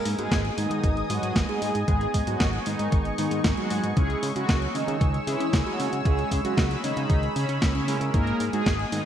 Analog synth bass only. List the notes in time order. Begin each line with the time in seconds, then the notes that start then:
0.05 G#2
0.18 G#2
0.31 G#1
0.57 G#2
0.70 G#2
0.84 G#1
1.10 G#2
1.23 G#2
1.36 G#1
1.62 G#2
1.75 G#2
1.88 G#1
2.14 G#2
2.27 G#2
2.40 G#1
2.66 G#2
2.79 G#2
2.92 G#1
3.18 G#2
3.31 G#2
3.45 G#1
3.71 G#2
3.84 G#2
3.97 C#2
4.23 C#3
4.36 C#3
4.49 C#2
4.75 C#3
4.88 C#3
5.01 C#2
5.27 C#3
5.40 C#3
5.53 C#2
5.79 C#3
5.92 C#3
6.05 C#2
6.31 C#3
6.44 C#3
6.58 C#2
6.84 C#3
6.97 C#3
7.10 C#2
7.36 C#3
7.49 C#3
7.62 C#2
7.88 C#3
8.01 C#3
8.14 G#1
8.40 G#2
8.53 G#2
8.66 G#1
8.92 G#2